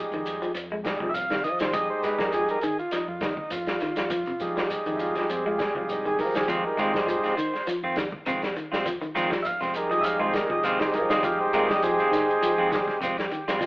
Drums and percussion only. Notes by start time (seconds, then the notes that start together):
0.12 closed hi-hat, shekere
0.25 closed hi-hat, shekere
0.42 shekere
0.54 closed hi-hat, shekere
0.85 kick, snare, closed hi-hat, shekere
1.00 kick
1.14 closed hi-hat, shekere
1.30 snare, closed hi-hat
1.44 closed hi-hat, shekere
1.60 snare, shekere
1.73 kick, closed hi-hat, shekere
2.03 snare, closed hi-hat, shekere
2.19 kick, snare, shekere
2.32 closed hi-hat, shekere
2.48 closed hi-hat, shekere
2.61 closed hi-hat, shekere
2.79 shekere
2.91 snare, closed hi-hat, shekere
3.21 kick, snare, closed hi-hat, shekere
3.37 kick
3.50 closed hi-hat, shekere
3.66 snare, closed hi-hat
3.80 snare, closed hi-hat, shekere
3.96 snare, shekere
4.10 kick, closed hi-hat, shekere
4.26 closed hi-hat
4.40 closed hi-hat, shekere
4.57 snare, shekere
4.70 closed hi-hat, shekere
4.86 closed hi-hat, shekere
4.99 closed hi-hat, shekere
5.15 snare, shekere
5.29 closed hi-hat, shekere
5.59 kick, snare, closed hi-hat, shekere
5.75 kick
5.89 closed hi-hat, shekere
6.06 closed hi-hat
6.19 kick, open hi-hat, shekere
6.35 snare, shekere
6.48 kick, closed hi-hat, shekere
6.78 closed hi-hat, shekere
6.94 kick, snare, shekere
7.08 closed hi-hat, shekere
7.24 snare, closed hi-hat, shekere
7.37 closed hi-hat, shekere
7.55 snare, shekere
7.67 closed hi-hat, shekere
7.96 kick, snare, closed hi-hat, shekere
8.12 kick
8.26 closed hi-hat, shekere
8.42 snare, closed hi-hat
8.56 closed hi-hat, shekere
8.74 snare, shekere
8.86 kick, closed hi-hat, shekere
9.02 closed hi-hat
9.15 snare, closed hi-hat, shekere
9.31 kick, snare, shekere
9.45 closed hi-hat, shekere
9.61 snare, closed hi-hat, shekere
9.74 closed hi-hat, shekere
9.92 shekere
10.04 closed hi-hat, shekere
10.33 kick, snare, closed hi-hat, shekere
10.50 kick
10.63 closed hi-hat, shekere
10.79 snare, closed hi-hat
10.93 closed hi-hat, shekere
11.10 snare, shekere
11.23 kick, closed hi-hat, shekere
11.53 closed hi-hat, shekere
11.69 kick, snare, shekere
11.82 closed hi-hat, shekere
11.99 closed hi-hat, shekere
12.13 snare, closed hi-hat, shekere
12.30 shekere
12.43 closed hi-hat, shekere
12.72 kick, snare, closed hi-hat, shekere
12.88 kick, snare
13.02 closed hi-hat, shekere
13.18 snare, closed hi-hat
13.31 closed hi-hat, shekere
13.48 snare, shekere
13.61 kick, closed hi-hat, shekere